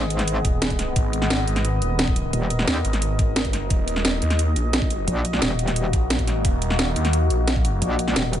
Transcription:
0.00 0.43 G#1 loud
0.00 3.66 B3 medium
0.00 0.93 G#4 medium
0.00 8.40 D#5 medium
0.10 closed hi-hat medium
0.19 snare medium
0.19 closed hi-hat soft
0.28 closed hi-hat loud
0.45 0.95 D#1 loud
0.45 kick loud
0.45 closed hi-hat medium
0.62 snare loud
0.62 closed hi-hat medium
0.70 kick medium
0.70 closed hi-hat soft
0.79 snare soft
0.79 closed hi-hat medium
0.96 1.46 G#1 loud
0.96 3.68 A#4 medium
0.96 kick loud
0.96 closed hi-hat medium
1.13 closed hi-hat medium
1.22 snare medium
1.30 snare loud
1.30 closed hi-hat medium
1.48 1.80 G#1 loud
1.48 closed hi-hat medium
1.56 snare soft
1.56 closed hi-hat soft
1.65 closed hi-hat medium
1.82 2.32 D#1 loud
1.82 closed hi-hat medium
1.99 snare loud
1.99 closed hi-hat medium
2.08 kick loud
2.16 closed hi-hat medium
2.33 2.66 D#1 loud
2.33 closed hi-hat medium
2.50 closed hi-hat medium
2.59 snare medium
2.68 2.83 D#2 loud
2.68 snare loud
2.68 closed hi-hat medium
2.85 3.45 G#1 loud
2.85 closed hi-hat medium
2.93 snare soft
2.93 closed hi-hat soft
3.02 closed hi-hat medium
3.19 kick loud
3.19 closed hi-hat medium
3.36 snare loud
3.36 closed hi-hat medium
3.45 3.69 G1 loud
3.45 kick medium
3.45 closed hi-hat soft
3.53 snare soft
3.53 closed hi-hat medium
3.70 4.21 D#1 loud
3.70 8.40 A#3 medium
3.70 8.40 F#4 medium
3.70 kick loud
3.70 closed hi-hat medium
3.88 closed hi-hat medium
3.96 snare medium
4.05 snare loud
4.05 closed hi-hat medium
4.22 4.55 D#2 loud
4.22 closed hi-hat medium
4.30 snare soft
4.30 closed hi-hat soft
4.39 closed hi-hat medium
4.56 5.06 A#1 loud
4.56 closed hi-hat medium
4.73 snare loud
4.73 closed hi-hat medium
4.82 kick loud
4.90 closed hi-hat medium
5.08 5.41 A#1 loud
5.08 closed hi-hat medium
5.25 closed hi-hat medium
5.33 snare medium
5.42 5.92 D#1 loud
5.42 snare loud
5.42 closed hi-hat medium
5.59 closed hi-hat medium
5.68 snare soft
5.68 closed hi-hat soft
5.76 closed hi-hat medium
5.93 6.43 A#1 loud
5.93 kick loud
5.93 closed hi-hat medium
6.10 snare loud
6.10 closed hi-hat medium
6.19 kick medium
6.19 closed hi-hat soft
6.28 snare soft
6.28 closed hi-hat medium
6.45 6.95 D#1 loud
6.45 kick loud
6.45 closed hi-hat medium
6.62 closed hi-hat medium
6.70 snare medium
6.79 snare loud
6.79 closed hi-hat loud
6.96 7.29 D#2 loud
6.96 closed hi-hat medium
7.05 snare soft
7.05 closed hi-hat soft
7.13 closed hi-hat loud
7.30 7.80 A#1 loud
7.30 closed hi-hat medium
7.48 snare loud
7.48 closed hi-hat loud
7.56 kick loud
7.65 closed hi-hat medium
7.82 8.15 A#1 loud
7.82 closed hi-hat loud
7.99 closed hi-hat medium
8.08 snare medium
8.16 8.40 D#1 loud
8.16 snare loud
8.16 closed hi-hat loud
8.33 closed hi-hat medium

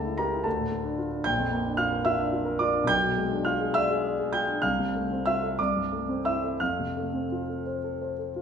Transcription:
0.00 0.44 C#2 soft
0.00 0.47 C#3 soft
0.00 0.13 A3 soft
0.00 0.15 A4 medium
0.00 0.18 A5 medium
0.05 0.26 E4 soft
0.18 0.40 G4 soft
0.18 0.44 A#4 medium
0.18 0.45 A#5 medium
0.33 0.46 E4 soft
0.44 1.24 D2 medium
0.44 0.95 A4 medium
0.44 0.98 A5 medium
0.59 0.80 A2 soft
0.72 0.93 A3 soft
0.84 1.07 D4 soft
0.98 1.20 F4 soft
1.11 1.25 D4 soft
1.24 2.84 A#1 medium
1.24 1.76 G5 medium
1.24 1.79 G6 medium
1.38 1.60 F2 soft
1.51 1.73 A#3 medium
1.65 1.87 D4 soft
1.77 2.00 F4 soft
1.77 2.04 F5 medium
1.77 2.05 F6 medium
1.93 2.14 A#4 soft
2.05 2.28 F4 soft
2.05 2.57 E5 medium
2.05 2.61 E6 medium
2.19 2.41 D4 soft
2.33 2.55 F4 soft
2.45 2.68 A#4 soft
2.59 2.83 F4 soft
2.59 2.87 D5 medium
2.59 2.88 D6 medium
2.75 2.89 D4 soft
2.84 4.56 B1 medium
2.84 3.45 G6 loud
2.89 3.42 G5 medium
3.03 3.25 B2 soft
3.17 3.40 G#3 soft
3.31 3.54 D4 soft
3.45 3.69 F4 medium
3.45 3.73 F5 medium
3.45 3.74 F6 medium
3.61 3.84 G#4 soft
3.74 3.98 D5 medium
3.74 4.29 E5 medium
3.74 4.33 E6 medium
3.91 4.13 G#4 medium
4.05 4.28 D5 medium
4.19 4.42 G#4 soft
4.33 4.57 F4 soft
4.33 4.61 G5 medium
4.33 4.62 G6 medium
4.48 4.63 D4 soft
4.62 5.55 C2 medium
4.62 5.21 F5 medium
4.62 5.25 F6 medium
4.79 5.03 C3 soft
4.95 5.19 A3 soft
5.11 5.36 C4 soft
5.26 5.52 F4 soft
5.26 5.56 E5 medium
5.26 5.58 E6 medium
5.43 5.59 A4 soft
5.59 6.58 C2 soft
5.59 6.21 D5 medium
5.59 6.25 D6 medium
5.76 6.02 G2 soft
5.93 6.19 A3 soft
6.09 6.35 C4 soft
6.25 6.53 E4 soft
6.25 6.58 E5 medium
6.25 6.60 E6 medium
6.44 6.61 A4 soft
6.60 8.42 F2 soft
6.60 7.63 F5 medium
6.60 7.67 F6 medium
6.79 7.08 C3 soft
6.97 7.25 A3 soft
7.13 7.42 C4 soft
7.32 7.60 F4 soft
7.49 7.77 A4 soft
7.66 7.94 C5 soft
7.84 8.11 A4 soft
8.02 8.29 C5 soft
8.19 8.42 A4 soft
8.36 8.42 F4 soft

